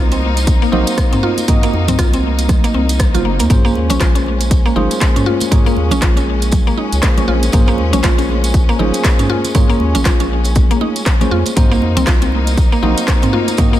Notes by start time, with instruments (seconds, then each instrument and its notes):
Already playing: analog synth bass C2, tine electric piano A#3 C4 D#4 F#4 C5, string section A#3 D#4, synth pluck F4
0.12 synth pluck C4, closed hi-hat, tambourine, muted conga
0.22 high conga
0.37 closed hi-hat, tambourine
0.47 kick, closed hi-hat, tambourine, muted conga
0.62 synth pluck A#3, tambourine
0.72 analog synth bass A#1, tine electric piano A#3 C4 D#4 F#4 C5, synth pluck D#4, high conga, low conga
0.87 closed hi-hat, tambourine
0.98 kick, cross-stick, closed hi-hat, tambourine, muted conga
1.13 synth pluck C4, closed hi-hat, mid tom, tambourine
1.23 synth pluck F4, high conga
1.37 closed hi-hat, tambourine, muted conga
1.48 tine electric piano A#3 C4 D#4 F#4 D#5, synth pluck A#3, kick, closed hi-hat, mid tom, tambourine
1.63 synth pluck A#3, closed hi-hat, tambourine
1.73 analog synth bass F2, muted conga
1.88 analog synth bass C2, synth pluck C4, closed hi-hat, mid tom, tambourine, high conga, low conga
1.99 analog synth bass C2, synth pluck F4, kick, cross-stick, closed hi-hat, tambourine
2.13 synth pluck C4, closed hi-hat, tambourine, muted conga
2.23 high conga
2.39 closed hi-hat, tambourine
2.49 kick, cross-stick, closed hi-hat, tambourine, muted conga, high conga, low conga
2.64 synth pluck A#3, closed hi-hat, tambourine
2.74 analog synth bass C2, synth pluck C4, high conga
2.89 closed hi-hat, tambourine
2.99 kick, cross-stick, closed hi-hat, tambourine, muted conga
3.14 analog synth bass F#1, tine electric piano A#3 C4 D#4 F#4 C5, synth pluck F4, closed hi-hat, tambourine, high conga, low conga
3.25 synth pluck A#3
3.39 analog synth bass D#2, synth pluck A#3, closed hi-hat, tambourine, muted conga
3.50 analog synth bass A#1, string section G#3 C#4, synth pluck A#3, tine electric piano A#3 C#4 F4 G#4 C5, kick, closed hi-hat, mid tom, tambourine
3.65 synth pluck A#3, tambourine
3.75 analog synth bass D#2, muted conga
3.90 analog synth bass A#1, synth pluck C#4, closed hi-hat, tambourine, high conga, low conga
4.00 analog synth bass A#1, synth pluck F4, kick, cross-stick, clap, closed hi-hat, tambourine
4.15 synth pluck C#4, closed hi-hat, tambourine, muted conga
4.26 high conga
4.41 closed hi-hat, tambourine
4.51 kick, closed hi-hat, tambourine, muted conga
4.66 synth pluck A#3, tambourine
4.76 analog synth bass G#1, tine electric piano A#3 C#4 F4 G#4 C5, synth pluck D#4, high conga, low conga
4.91 closed hi-hat, tambourine
5.01 kick, cross-stick, clap, closed hi-hat, tambourine
5.16 synth pluck C#4, closed hi-hat, mid tom, tambourine
5.26 synth pluck F4, high conga
5.40 closed hi-hat, tambourine, muted conga
5.51 synth pluck A#3, tine electric piano A#3 C#4 F4 G#4 C#5, kick, closed hi-hat, mid tom, tambourine
5.66 synth pluck A#3, tambourine
5.76 analog synth bass D#2, muted conga
5.91 analog synth bass A#1, synth pluck C#4, closed hi-hat, tambourine, high conga, low conga
6.02 analog synth bass A#1, synth pluck F4, kick, cross-stick, clap, closed hi-hat, tambourine
6.17 synth pluck C#4, closed hi-hat, tambourine, muted conga
6.42 closed hi-hat, tambourine
6.51 kick, closed hi-hat, tambourine, muted conga, high conga, low conga
6.67 synth pluck A#3, tambourine
6.77 synth pluck D#4
6.92 analog synth bass C#2, closed hi-hat, tambourine
7.02 tine electric piano A#3 C#4 F4 G#4 C5, kick, cross-stick, clap, closed hi-hat, tambourine, muted conga
7.17 synth pluck C#4, closed hi-hat, tambourine, high conga, low conga
7.28 analog synth bass A#1, synth pluck F4
7.43 closed hi-hat, tambourine, muted conga
7.52 analog synth bass A#1, tine electric piano A#3 C#4 F4 G#4 C5, synth pluck A#3, kick, closed hi-hat, mid tom, tambourine
7.67 synth pluck A#3, tambourine
7.78 analog synth bass D#2, muted conga
7.93 analog synth bass A#1, synth pluck C#4, closed hi-hat, tambourine, high conga, low conga
8.03 analog synth bass A#1, synth pluck F4, kick, cross-stick, clap, closed hi-hat, tambourine
8.18 synth pluck C#4, closed hi-hat, tambourine, muted conga
8.29 high conga
8.44 closed hi-hat, tambourine
8.54 kick, closed hi-hat, tambourine, muted conga
8.69 synth pluck A#3, tambourine
8.79 analog synth bass G#1, tine electric piano A#3 C#4 F4 G#4 C5, synth pluck D#4, high conga, low conga
8.94 closed hi-hat, tambourine
9.04 kick, cross-stick, clap, closed hi-hat, tambourine
9.19 synth pluck C#4, closed hi-hat, mid tom, tambourine
9.29 synth pluck F4, high conga
9.44 closed hi-hat, tambourine, muted conga
9.55 synth pluck A#3, tine electric piano A#3 C#4 F4 G#4 C#5, kick, closed hi-hat, mid tom, tambourine
9.70 synth pluck A#3, tambourine
9.80 analog synth bass D#2, muted conga
9.95 analog synth bass A#1, synth pluck C#4, closed hi-hat, tambourine, high conga, low conga
10.05 analog synth bass A#1, synth pluck F4, kick, cross-stick, clap, closed hi-hat, tambourine
10.20 synth pluck C#4, closed hi-hat, tambourine, muted conga
10.44 closed hi-hat, tambourine
10.55 kick, closed hi-hat, tambourine, muted conga, high conga, low conga
10.71 synth pluck A#3, closed hi-hat, tambourine
10.81 synth pluck D#4, high conga
10.96 closed hi-hat, tambourine
11.06 kick, cross-stick, clap, closed hi-hat
11.21 tine electric piano A#3 C#4 F4 G#4 C5, synth pluck C#4, closed hi-hat, tambourine, high conga, low conga
11.31 analog synth bass F2, synth pluck F4
11.46 closed hi-hat, tambourine, muted conga
11.56 analog synth bass C2, tine electric piano A#3 C4 D#4 F#4 C5, synth pluck A#3, string section A#3 D#4, kick, closed hi-hat, mid tom, tambourine
11.71 synth pluck A#3, tambourine
11.81 analog synth bass F2, muted conga
11.96 analog synth bass C2, synth pluck C4, closed hi-hat, tambourine, high conga, low conga
12.07 analog synth bass C2, synth pluck F4, kick, cross-stick, clap, closed hi-hat, tambourine
12.22 synth pluck C4, closed hi-hat, tambourine, muted conga
12.32 high conga
12.47 closed hi-hat, tambourine
12.57 kick, closed hi-hat, tambourine, muted conga
12.72 synth pluck A#3, tambourine
12.82 analog synth bass A#1, tine electric piano A#3 C4 D#4 F#4 C5, synth pluck D#4, high conga, low conga
12.98 closed hi-hat, tambourine
13.08 kick, cross-stick, clap, closed hi-hat, tambourine
13.22 synth pluck C4, closed hi-hat, mid tom, tambourine
13.33 synth pluck F4, high conga
13.48 closed hi-hat, tambourine, muted conga
13.57 tine electric piano A#3 C4 D#4 F#4 D#5, synth pluck A#3, kick, closed hi-hat, mid tom, tambourine
13.73 synth pluck A#3, tambourine